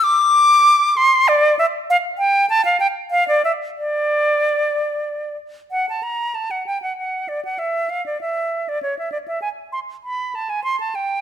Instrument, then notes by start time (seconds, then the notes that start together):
flute
0.04 D6
0.97 C6
1.28 D5
1.59 E5
1.90 F5
2.18 G5
2.50 A5
2.65 F5
2.80 G5
3.11 F5
3.28 D5
3.45 E5
3.77 D5
5.71 F#5
5.89 A5
6.03 A#5
6.35 A5
6.51 F#5
6.66 G5
6.82 F#5
6.98 F#5
7.28 D5
7.45 F#5
7.59 E5
7.89 F5
8.06 D5
8.21 E5
8.69 D5
8.83 C#5
8.99 E5
9.12 D5
9.28 E5
9.42 G#5
9.72 C6
10.04 B5
10.35 A5
10.50 G#5
10.64 C6
10.80 A5
10.95 G5